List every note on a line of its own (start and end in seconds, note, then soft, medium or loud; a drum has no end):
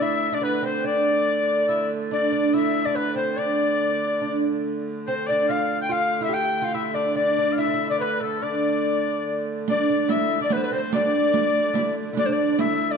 0.00 4.64 D3 medium
0.00 4.64 A3 medium
0.00 0.31 E4 medium
0.00 0.36 E5 medium
0.00 0.35 E5 loud
0.32 0.41 D4 medium
0.32 0.34 E4 medium
0.32 0.45 D5 medium
0.32 0.43 D5 medium
0.41 0.62 B3 medium
0.41 0.64 B4 medium
0.41 0.63 B4 medium
0.62 0.85 C4 medium
0.62 0.88 C5 medium
0.62 0.85 C5 medium
0.84 1.68 D4 medium
0.84 1.91 D5 loud
0.84 1.66 D5 medium
1.68 1.89 E4 medium
1.68 1.88 E5 medium
2.11 2.31 D4 medium
2.11 2.55 D5 medium
2.11 2.51 D5 medium
2.32 2.53 D4 medium
2.54 2.86 E4 medium
2.54 2.87 E5 medium
2.85 2.96 D4 medium
2.85 2.98 D5 medium
2.85 2.97 D5 medium
2.95 3.15 B3 medium
2.95 3.14 B4 medium
2.95 3.17 B4 medium
3.15 3.38 C4 medium
3.15 3.38 C5 medium
3.15 3.41 C5 medium
3.36 4.20 D4 medium
3.36 4.42 D5 medium
3.36 4.44 D5 medium
4.21 4.41 D4 medium
4.64 9.67 D3 medium
4.64 9.68 A3 medium
5.07 5.29 C4 medium
5.07 5.28 C5 medium
5.07 5.14 C5 medium
5.26 5.49 D4 medium
5.26 5.48 D5 medium
5.26 5.52 D5 medium
5.48 5.88 F4 medium
5.48 5.78 F5 medium
5.48 5.80 F5 medium
5.81 5.93 G5 medium
5.81 5.90 G5 medium
5.89 6.20 F4 medium
5.89 6.25 F5 medium
5.89 6.23 F5 loud
6.21 6.32 E4 medium
6.21 6.35 E5 medium
6.29 6.60 G4 medium
6.34 6.61 G5 loud
6.34 6.74 G5 loud
6.61 6.73 F4 medium
6.61 6.76 F5 medium
6.61 6.65 G5 medium
6.74 6.95 E4 medium
6.74 6.84 E5 medium
6.74 6.96 E5 medium
6.94 7.14 D4 medium
6.94 7.14 D5 medium
7.15 7.37 D4 medium
7.15 7.54 D5 loud
7.15 7.54 D5 medium
7.38 7.57 D4 medium
7.52 7.62 F5 medium
7.58 7.66 E4 medium
7.58 7.87 E5 medium
7.58 7.93 E5 medium
7.67 7.73 E4 medium
7.74 7.90 E4 medium
7.89 8.01 D4 medium
7.89 7.99 D5 medium
7.89 8.04 D5 medium
8.00 8.20 B3 medium
8.00 8.22 B4 medium
8.20 8.43 A3 medium
8.20 8.41 A4 medium
8.20 8.45 A4 medium
8.41 9.43 D4 medium
8.41 9.42 D5 medium
8.41 9.47 D5 medium
9.67 12.97 D3 medium
9.67 12.97 A3 medium
9.67 9.88 D4 medium
9.67 10.07 D5 medium
9.67 10.14 D5 loud
9.67 riq medium
9.90 10.08 D4 medium
10.09 10.40 E4 medium
10.09 10.39 E5 loud
10.09 10.42 E5 loud
10.09 riq medium
10.40 10.51 D4 medium
10.40 10.54 D5 medium
10.50 10.71 B3 medium
10.50 10.58 B4 medium
10.50 10.62 B4 medium
10.50 riq medium
10.57 10.66 C5 medium
10.64 10.68 B4 medium
10.64 10.74 B4 medium
10.71 10.93 C4 medium
10.71 10.92 C5 medium
10.71 10.81 C5 medium
10.93 11.73 D4 medium
10.93 11.94 D5 medium
10.93 11.94 D5 loud
10.93 riq medium
11.34 riq medium
11.74 11.94 E4 medium
11.74 riq medium
12.13 12.27 D4 medium
12.13 12.17 E4 medium
12.17 12.31 D5 medium
12.17 12.27 D5 loud
12.17 riq medium
12.26 12.59 D4 medium
12.26 12.34 C5 medium
12.32 12.62 D5 medium
12.32 12.58 D5 medium
12.59 12.97 E4 medium
12.59 12.92 E5 medium
12.59 12.94 E5 medium
12.59 riq medium
12.91 12.97 D5 medium